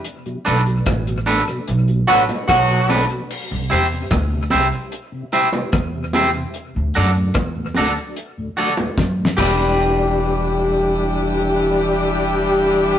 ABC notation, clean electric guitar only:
X:1
M:4/4
L:1/8
Q:1/4=74
K:Em
V:1 name="Clean electric guitar"
z [DAB] z [DAB] z [DAB] z [DAB] | z [EGc] z [EGc] z [EGc] z [EGc] | z [FAd] z [FAd] z [FAd] z [GBd]- | [GBd]8 |]